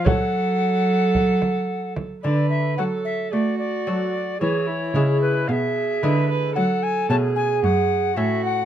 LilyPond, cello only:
\new Staff \with { instrumentName = "Cello" } { \clef bass \time 4/4 \key fis \minor \tempo 4 = 111 fis2.~ fis8 r8 | d4 fis4 a4 fis4 | e4 cis4 b,4 d4 | fis4 b,4 fis,4 a,4 | }